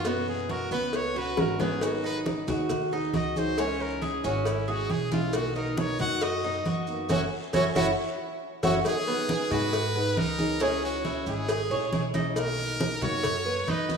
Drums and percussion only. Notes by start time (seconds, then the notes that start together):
0.05 cowbell, high conga, long guiro, maracas
0.27 high conga, maracas
0.49 cowbell, high conga, short guiro, maracas
0.71 high conga, short guiro, maracas
0.93 cowbell, high conga, long guiro, maracas
1.16 high conga, maracas
1.37 cowbell, high bongo, high conga, short guiro, maracas
1.59 cowbell, low bongo, high conga, short guiro, maracas
1.81 cowbell, long guiro, maracas
2.04 high conga, maracas
2.26 cowbell, high conga, short guiro, maracas
2.48 cowbell, high conga, low conga, short guiro, maracas
2.69 cowbell, high conga, low conga, long guiro, maracas
2.92 high conga, maracas
3.14 cowbell, high conga, short guiro, maracas
3.36 high conga, short guiro, maracas
3.57 cowbell, high conga, long guiro, maracas
3.80 high conga, maracas
4.02 cowbell, high conga, short guiro, maracas
4.24 high conga, short guiro, maracas
4.45 cowbell, high conga, long guiro, maracas
4.68 high conga, maracas
4.89 cowbell, high conga, short guiro, maracas
5.11 cowbell, high conga, short guiro, maracas
5.33 cowbell, long guiro, maracas
5.55 high conga, maracas
5.77 cowbell, high conga, short guiro, maracas
5.99 cowbell, high conga, low conga, short guiro, maracas
6.21 cowbell, high conga, long guiro, maracas
6.44 high conga, maracas
6.65 cowbell, high conga, short guiro, maracas
6.87 short guiro, maracas
7.09 cowbell, high conga, long guiro, maracas
7.53 cowbell, high conga, long guiro, maracas
7.75 cowbell, high conga, long guiro, maracas
8.63 cowbell, high conga, long guiro, maracas
8.85 cowbell, high conga, long guiro, maracas
9.08 high conga, maracas
9.29 cowbell, high conga, short guiro, maracas
9.51 cowbell, high conga, low conga, short guiro, maracas
9.73 cowbell, high conga, maracas
9.95 high conga, maracas
10.17 cowbell, high conga, short guiro, maracas
10.38 high conga, short guiro, maracas
10.60 cowbell, long guiro, maracas
10.83 high conga, maracas
11.05 cowbell, high conga, short guiro, maracas
11.26 high conga, short guiro, maracas
11.48 cowbell, high conga, long guiro, maracas
11.71 high conga, maracas
11.92 cowbell, high conga, short guiro, maracas
12.14 cowbell, high conga, short guiro, maracas
12.36 cowbell, high conga, long guiro, maracas
12.58 high conga, maracas
12.80 cowbell, high conga, short guiro, maracas
13.01 cowbell, high conga, low conga, short guiro, maracas
13.23 cowbell, high conga, low conga, long guiro, maracas
13.46 high conga, maracas
13.67 cowbell, high conga, short guiro, maracas
13.89 high conga, short guiro, maracas